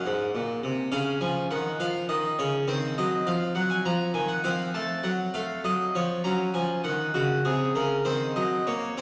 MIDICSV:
0, 0, Header, 1, 2, 480
1, 0, Start_track
1, 0, Tempo, 585366
1, 759, Time_signature, 12, 3, 24, 8
1, 3647, Tempo, 602410
1, 7285, End_track
2, 0, Start_track
2, 0, Title_t, "Harpsichord"
2, 0, Program_c, 0, 6
2, 0, Note_on_c, 0, 61, 38
2, 46, Note_on_c, 0, 44, 61
2, 235, Note_off_c, 0, 44, 0
2, 285, Note_on_c, 0, 46, 57
2, 474, Note_off_c, 0, 46, 0
2, 521, Note_on_c, 0, 48, 58
2, 712, Note_off_c, 0, 48, 0
2, 725, Note_off_c, 0, 61, 0
2, 751, Note_on_c, 0, 77, 92
2, 753, Note_on_c, 0, 49, 55
2, 753, Note_on_c, 0, 61, 39
2, 947, Note_off_c, 0, 49, 0
2, 992, Note_on_c, 0, 80, 98
2, 993, Note_on_c, 0, 53, 54
2, 994, Note_off_c, 0, 77, 0
2, 1186, Note_off_c, 0, 53, 0
2, 1197, Note_off_c, 0, 80, 0
2, 1236, Note_on_c, 0, 78, 83
2, 1238, Note_on_c, 0, 51, 57
2, 1429, Note_off_c, 0, 51, 0
2, 1439, Note_off_c, 0, 78, 0
2, 1475, Note_on_c, 0, 77, 96
2, 1476, Note_on_c, 0, 53, 59
2, 1670, Note_off_c, 0, 53, 0
2, 1681, Note_off_c, 0, 77, 0
2, 1713, Note_on_c, 0, 75, 88
2, 1715, Note_on_c, 0, 51, 59
2, 1912, Note_off_c, 0, 51, 0
2, 1923, Note_off_c, 0, 75, 0
2, 1958, Note_on_c, 0, 73, 90
2, 1960, Note_on_c, 0, 49, 55
2, 2156, Note_off_c, 0, 49, 0
2, 2171, Note_off_c, 0, 61, 0
2, 2194, Note_on_c, 0, 60, 42
2, 2197, Note_on_c, 0, 72, 89
2, 2198, Note_on_c, 0, 51, 58
2, 2204, Note_off_c, 0, 73, 0
2, 2395, Note_off_c, 0, 51, 0
2, 2407, Note_off_c, 0, 72, 0
2, 2445, Note_on_c, 0, 75, 91
2, 2447, Note_on_c, 0, 54, 58
2, 2639, Note_off_c, 0, 54, 0
2, 2680, Note_on_c, 0, 53, 58
2, 2680, Note_on_c, 0, 77, 92
2, 2685, Note_off_c, 0, 75, 0
2, 2872, Note_off_c, 0, 53, 0
2, 2911, Note_on_c, 0, 78, 103
2, 2916, Note_on_c, 0, 54, 63
2, 2919, Note_off_c, 0, 77, 0
2, 3034, Note_on_c, 0, 80, 83
2, 3036, Note_off_c, 0, 78, 0
2, 3109, Note_off_c, 0, 54, 0
2, 3157, Note_off_c, 0, 80, 0
2, 3160, Note_on_c, 0, 82, 96
2, 3162, Note_on_c, 0, 53, 54
2, 3355, Note_off_c, 0, 53, 0
2, 3366, Note_off_c, 0, 82, 0
2, 3395, Note_on_c, 0, 80, 94
2, 3396, Note_on_c, 0, 51, 56
2, 3512, Note_on_c, 0, 78, 86
2, 3521, Note_off_c, 0, 80, 0
2, 3594, Note_off_c, 0, 51, 0
2, 3609, Note_off_c, 0, 60, 0
2, 3640, Note_on_c, 0, 77, 88
2, 3641, Note_off_c, 0, 78, 0
2, 3645, Note_on_c, 0, 53, 58
2, 3647, Note_on_c, 0, 60, 41
2, 3837, Note_off_c, 0, 53, 0
2, 3847, Note_off_c, 0, 77, 0
2, 3882, Note_on_c, 0, 81, 102
2, 3885, Note_on_c, 0, 57, 55
2, 4077, Note_off_c, 0, 57, 0
2, 4088, Note_off_c, 0, 81, 0
2, 4114, Note_on_c, 0, 78, 94
2, 4118, Note_on_c, 0, 54, 58
2, 4313, Note_off_c, 0, 54, 0
2, 4323, Note_off_c, 0, 78, 0
2, 4357, Note_on_c, 0, 77, 79
2, 4359, Note_on_c, 0, 57, 62
2, 4555, Note_off_c, 0, 57, 0
2, 4600, Note_on_c, 0, 54, 59
2, 4602, Note_on_c, 0, 75, 85
2, 4603, Note_off_c, 0, 77, 0
2, 4796, Note_off_c, 0, 54, 0
2, 4845, Note_off_c, 0, 75, 0
2, 4846, Note_on_c, 0, 53, 59
2, 4847, Note_on_c, 0, 73, 91
2, 5037, Note_off_c, 0, 53, 0
2, 5050, Note_off_c, 0, 73, 0
2, 5054, Note_off_c, 0, 60, 0
2, 5076, Note_on_c, 0, 82, 99
2, 5079, Note_on_c, 0, 54, 56
2, 5081, Note_on_c, 0, 61, 41
2, 5272, Note_off_c, 0, 54, 0
2, 5282, Note_off_c, 0, 82, 0
2, 5314, Note_on_c, 0, 80, 97
2, 5317, Note_on_c, 0, 53, 56
2, 5511, Note_off_c, 0, 53, 0
2, 5521, Note_off_c, 0, 80, 0
2, 5552, Note_on_c, 0, 78, 98
2, 5558, Note_on_c, 0, 51, 60
2, 5749, Note_off_c, 0, 51, 0
2, 5758, Note_off_c, 0, 78, 0
2, 5794, Note_on_c, 0, 66, 92
2, 5799, Note_on_c, 0, 49, 62
2, 5988, Note_off_c, 0, 49, 0
2, 6033, Note_off_c, 0, 66, 0
2, 6039, Note_on_c, 0, 68, 88
2, 6041, Note_on_c, 0, 48, 56
2, 6232, Note_off_c, 0, 48, 0
2, 6278, Note_off_c, 0, 68, 0
2, 6281, Note_on_c, 0, 70, 83
2, 6284, Note_on_c, 0, 49, 59
2, 6478, Note_off_c, 0, 49, 0
2, 6488, Note_off_c, 0, 61, 0
2, 6517, Note_on_c, 0, 72, 88
2, 6520, Note_on_c, 0, 51, 55
2, 6522, Note_on_c, 0, 60, 41
2, 6525, Note_off_c, 0, 70, 0
2, 6716, Note_off_c, 0, 51, 0
2, 6764, Note_off_c, 0, 72, 0
2, 6766, Note_on_c, 0, 75, 94
2, 6767, Note_on_c, 0, 54, 52
2, 6959, Note_off_c, 0, 54, 0
2, 7007, Note_off_c, 0, 75, 0
2, 7010, Note_on_c, 0, 73, 96
2, 7012, Note_on_c, 0, 58, 54
2, 7202, Note_off_c, 0, 58, 0
2, 7245, Note_off_c, 0, 60, 0
2, 7249, Note_off_c, 0, 73, 0
2, 7255, Note_on_c, 0, 60, 59
2, 7256, Note_on_c, 0, 72, 90
2, 7285, Note_off_c, 0, 60, 0
2, 7285, Note_off_c, 0, 72, 0
2, 7285, End_track
0, 0, End_of_file